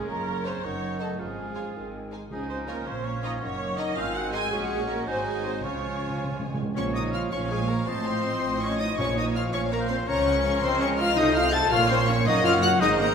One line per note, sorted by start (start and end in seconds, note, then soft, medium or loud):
0.00 0.66 C#4 medium
0.09 0.54 F#1 medium
0.09 0.55 F#2 medium
0.09 0.61 C#3 soft
0.09 0.46 A#3 medium
0.09 0.66 F4 soft
0.09 0.46 A#4 medium
0.09 0.40 A#5 medium
0.44 0.64 C4 medium
0.44 0.53 D#4 medium
0.44 0.64 C5 medium
0.44 0.54 C#5 medium
0.44 0.54 A#5 soft
0.63 1.10 F#1 medium
0.63 1.10 F#2 medium
0.63 1.18 D#3 soft
0.63 1.01 C#4 medium
0.63 1.21 D#4 medium
0.63 1.21 D#4 soft
0.63 1.01 C#5 medium
0.63 1.19 F#5 soft
0.99 1.19 A3 medium
0.99 1.08 D#4 soft
0.99 1.19 A4 medium
0.99 1.08 D#5 soft
0.99 1.09 A5 soft
1.18 1.66 G#1 soft
1.18 1.66 G#2 soft
1.18 1.77 F3 soft
1.18 2.11 G#3 soft
1.18 1.76 C#4 soft
1.18 2.04 F4 soft
1.18 2.10 G#4 medium
1.18 1.73 G#5 soft
1.55 1.64 F4 soft
1.55 1.65 C#5 soft
1.55 1.65 G#5 soft
1.74 2.22 G#1 soft
1.74 2.22 G#2 soft
1.74 2.13 D#3 soft
1.74 2.12 C4 soft
1.74 2.11 G#5 soft
2.11 2.21 D#4 soft
2.11 2.21 C5 soft
2.11 2.22 G#5 soft
2.30 2.77 C#2 medium
2.30 2.77 C#3 medium
2.30 2.83 C#3 medium
2.30 3.44 F3 soft
2.30 2.39 G#3 medium
2.30 3.44 C#4 soft
2.30 2.88 D#4 medium
2.30 2.48 G#4 medium
2.30 2.84 G#5 soft
2.49 2.68 C4 medium
2.49 2.57 C5 medium
2.67 2.86 A#3 medium
2.67 2.77 F4 medium
2.67 2.86 A#4 medium
2.67 2.77 C#5 medium
2.67 2.77 G#5 medium
2.86 3.33 A#1 medium
2.86 3.33 A#2 medium
2.86 3.06 C4 medium
2.86 3.97 C#4 medium
2.86 3.05 C5 medium
2.86 3.42 F5 soft
3.05 3.24 C#4 medium
3.05 3.24 C#5 medium
3.23 3.42 D#4 medium
3.23 3.32 F4 medium
3.23 3.32 C#5 medium
3.23 3.31 D#5 medium
3.23 3.33 A#5 medium
3.42 3.88 F#1 medium
3.42 3.88 F#2 medium
3.42 4.52 D#3 medium
3.42 3.98 A#3 medium
3.42 3.78 C#4 medium
3.42 3.78 C#5 medium
3.42 3.97 F#5 medium
3.78 3.87 D#4 medium
3.78 3.97 D#4 medium
3.78 3.87 D#5 medium
3.78 3.97 D#5 medium
3.78 3.87 A#5 medium
3.95 4.43 G#1 medium
3.95 4.43 G#2 medium
3.95 4.51 C4 medium
3.95 4.54 C4 medium
3.95 4.15 F4 medium
3.95 4.15 F5 loud
3.95 4.51 G#5 medium
4.15 4.34 F#4 medium
4.15 4.33 F#5 medium
4.32 4.42 D#4 medium
4.32 4.52 G#4 medium
4.32 4.42 D#5 medium
4.32 4.51 G#5 loud
4.32 4.41 C6 medium
4.51 5.04 A#1 medium
4.51 5.04 A#2 medium
4.51 5.04 F#3 medium
4.51 4.88 G#3 medium
4.51 5.08 C#4 medium
4.51 5.10 C#4 medium
4.51 5.03 F#4 medium
4.51 4.89 G#4 medium
4.51 5.03 C#5 medium
4.51 5.03 F#5 medium
4.51 5.03 C#6 medium
4.89 5.07 A#3 medium
4.89 5.07 A#4 medium
5.07 5.63 G#1 medium
5.07 5.63 G#2 medium
5.07 5.65 F#3 medium
5.07 5.26 C4 medium
5.07 5.65 D#4 medium
5.07 5.64 D#4 medium
5.07 5.63 F#4 medium
5.07 5.26 C5 medium
5.07 5.63 D#5 medium
5.07 5.63 G#5 medium
5.26 5.45 G#3 medium
5.26 5.44 G#4 medium
5.45 5.64 C4 medium
5.45 5.64 C5 medium
5.63 6.58 C#2 medium
5.63 6.58 C#3 medium
5.63 5.71 C#3 soft
5.63 6.58 F3 soft
5.63 6.58 C#4 medium
5.63 6.58 C#4 soft
5.63 6.56 F4 soft
5.63 6.47 F4 medium
5.63 6.56 C#5 medium
5.63 6.58 C#5 soft
5.63 6.56 G#5 soft
5.72 5.78 C#3 soft
5.79 5.85 C#3 soft
5.87 5.94 C#3 soft
5.95 6.01 C#3 soft
6.02 6.08 C#3 soft
6.09 6.15 C#3 soft
6.17 6.23 C#3 soft
6.24 6.31 C#3 medium
6.32 6.38 C#3 medium
6.39 6.46 C#3 medium
6.47 6.53 C#3 medium
6.54 6.61 C#3 medium
6.62 6.70 C#3 medium
6.76 7.26 A#1 medium
6.76 7.25 A#2 medium
6.76 7.28 F3 medium
6.76 6.83 C#4 medium
6.76 6.94 C#4 medium
6.76 6.95 C#5 medium
6.76 6.94 C#5 medium
6.76 6.82 C#5 medium
6.76 7.28 C#5 medium
6.76 6.84 C#6 medium
6.93 7.13 D#4 medium
6.93 7.14 D#4 medium
6.93 7.13 D#5 medium
6.93 7.01 D#5 medium
6.93 7.03 D#6 medium
7.11 7.32 F4 medium
7.11 7.33 F4 medium
7.11 7.31 F5 medium
7.11 7.32 F5 medium
7.11 7.19 F5 medium
7.11 7.21 F6 medium
7.31 7.81 A#1 medium
7.31 7.81 A#2 medium
7.31 7.87 F3 medium
7.31 7.50 C#4 medium
7.31 7.50 C#5 medium
7.31 7.90 C#5 medium
7.31 7.50 C#5 medium
7.31 7.84 F5 medium
7.31 7.39 C#6 medium
7.50 7.69 G#3 medium
7.50 7.69 G#4 medium
7.50 7.69 G#5 medium
7.68 7.76 A#3 medium
7.68 7.88 A#3 medium
7.68 7.89 A#4 medium
7.68 7.77 A#4 medium
7.68 7.87 A#4 medium
7.68 7.87 A#5 medium
7.87 8.36 A1 medium
7.87 8.36 A2 medium
7.87 8.96 F3 medium
7.87 8.60 C4 medium
7.87 8.60 C5 medium
7.87 8.61 C5 medium
7.87 8.62 C5 medium
7.87 8.99 D#5 medium
7.87 8.06 A5 medium
7.87 8.60 C6 loud
8.06 8.24 F5 medium
8.25 8.99 D#5 medium
8.43 8.92 A1 medium
8.43 8.92 A2 medium
8.61 8.80 C#4 medium
8.61 8.79 C#5 medium
8.61 8.80 C#5 medium
8.61 8.82 C#5 medium
8.61 8.80 C#6 medium
8.79 8.87 D#4 medium
8.79 8.98 D#4 medium
8.79 8.98 D#5 medium
8.79 8.99 D#5 medium
8.79 8.98 D#6 medium
8.97 9.47 A#1 medium
8.97 9.47 A#2 medium
8.97 9.50 A#2 medium
8.97 9.53 F3 medium
8.97 9.05 C#4 medium
8.97 9.17 C#4 medium
8.97 9.52 C#5 medium
8.97 9.53 C#5 medium
8.97 9.16 C#5 loud
8.97 9.17 C#5 medium
8.97 9.08 C#5 medium
8.97 9.16 C#6 medium
9.16 9.35 D#4 medium
9.16 9.36 D#4 medium
9.16 9.25 D#5 medium
9.16 9.35 D#5 medium
9.16 9.26 D#5 medium
9.16 9.25 D#6 medium
9.35 9.42 F4 medium
9.35 9.54 F4 medium
9.35 9.43 F5 medium
9.35 9.53 F5 medium
9.35 9.55 F5 medium
9.35 9.43 F6 loud
9.52 10.02 A#1 medium
9.52 10.02 A#2 medium
9.52 10.07 F3 medium
9.52 9.60 C#4 medium
9.52 9.72 C#4 medium
9.52 9.65 C#5 medium
9.52 9.62 C#5 medium
9.52 9.59 C#5 medium
9.52 9.74 C#5 medium
9.52 10.08 F5 medium
9.52 9.60 C#6 loud
9.71 9.89 A#3 medium
9.71 9.91 A#3 medium
9.71 9.80 A#4 medium
9.71 9.78 A#4 medium
9.71 9.90 A#4 medium
9.71 9.79 A#5 loud
9.80 10.08 C5 medium
9.88 9.97 C4 medium
9.88 9.98 C4 medium
9.88 10.08 C5 medium
9.88 9.96 C5 medium
9.88 9.98 C5 medium
9.88 9.96 C6 medium
10.07 10.56 C#2 medium
10.07 10.57 C#3 medium
10.07 11.15 F3 medium
10.07 10.61 C#4 loud
10.07 11.15 A#4 medium
10.07 10.65 C#5 medium
10.07 10.63 C#5 loud
10.07 10.39 C#5 loud
10.07 10.27 A#5 medium
10.07 10.61 C#6 loud
10.27 10.35 F#5 medium
10.45 10.52 F5 medium
10.62 11.11 C#2 medium
10.62 11.11 C#3 medium
10.62 10.81 C4 loud
10.62 10.80 C4 loud
10.62 10.81 C5 loud
10.62 10.69 C5 medium
10.62 10.84 C5 medium
10.62 11.70 D#5 loud
10.62 10.81 C6 loud
10.80 10.99 C#4 loud
10.80 10.86 C#5 medium
10.80 10.99 C#5 medium
10.80 11.01 C#5 medium
10.80 10.88 C#6 loud
10.98 11.17 F4 loud
10.98 11.18 F4 loud
10.98 11.17 F5 loud
10.98 11.16 F5 loud
10.98 11.17 F6 loud
11.16 11.68 C2 medium
11.16 11.68 C3 medium
11.16 11.74 A3 medium
11.16 11.35 D#4 loud
11.16 11.36 D#4 loud
11.16 11.74 C5 medium
11.16 11.35 D#5 loud
11.16 11.25 D#5 loud
11.16 11.36 D#5 loud
11.16 11.36 D#6 loud
11.34 11.53 F4 loud
11.34 11.54 F4 loud
11.34 11.43 F5 loud
11.34 11.55 F5 loud
11.34 11.54 F5 loud
11.34 11.53 F6 loud
11.52 11.60 A4 loud
11.52 11.72 A4 loud
11.52 11.71 A5 loud
11.52 11.72 A5 loud
11.52 11.73 A5 loud
11.52 11.72 A6 loud
11.71 12.27 A#1 loud
11.71 12.27 A#2 loud
11.71 12.27 A#3 medium
11.71 11.90 F4 loud
11.71 11.89 F4 loud
11.71 12.27 C#5 loud
11.71 12.26 C#5 medium
11.71 11.90 F5 loud
11.71 11.81 F5 loud
11.71 11.91 F5 loud
11.71 11.90 F6 loud
11.89 11.97 C4 loud
11.89 12.08 C4 loud
11.89 11.98 C5 loud
11.89 12.10 C5 loud
11.89 11.96 C5 loud
11.89 12.08 C6 loud
12.07 12.15 C#4 loud
12.07 12.26 C#4 loud
12.07 12.26 C#5 loud
12.07 12.27 C#5 medium
12.07 12.26 C#6 loud
12.25 12.82 F#1 loud
12.25 12.82 F#2 loud
12.25 12.81 A#3 loud
12.25 12.33 D#4 loud
12.25 12.45 D#4 loud
12.25 12.81 C#5 medium
12.25 12.44 D#5 loud
12.25 12.32 D#5 loud
12.25 12.44 D#5 loud
12.25 12.81 F#5 loud
12.25 12.45 D#6 loud
12.43 12.52 F4 loud
12.43 12.62 F4 loud
12.43 12.50 F5 loud
12.43 12.53 F5 loud
12.43 12.61 F5 loud
12.43 12.52 F6 loud
12.62 12.69 F#4 loud
12.62 12.81 F#4 loud
12.62 12.82 F#5 loud
12.62 12.71 F#5 loud
12.62 12.81 F#5 loud
12.62 12.71 F#6 loud
12.79 13.14 G#1 loud
12.79 13.14 G#2 medium
12.79 13.14 G#3 medium
12.79 12.99 D#4 loud
12.79 12.88 D#4 loud
12.79 13.14 C5 loud
12.79 12.98 D#5 loud
12.79 13.14 D#5 loud
12.79 12.87 D#5 loud
12.79 12.90 D#5 loud
12.79 12.90 D#6 loud
12.98 13.14 A#3 loud
12.98 13.07 A#3 loud
12.98 13.14 A#4 loud
12.98 13.14 A#5 loud